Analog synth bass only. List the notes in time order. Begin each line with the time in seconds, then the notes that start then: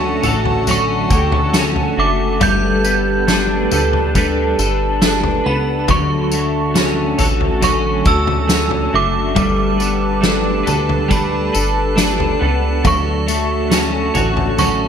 Already playing: D2
0.24 A1
1.10 D2
1.98 F#1
2.42 G1
3.72 D2
4.59 G1
5.46 C#2
5.89 D2
7.19 A1
8.06 D2
8.94 F#1
9.37 G1
10.68 D2
11.55 G1
12.42 C#2
12.85 D2
14.16 A1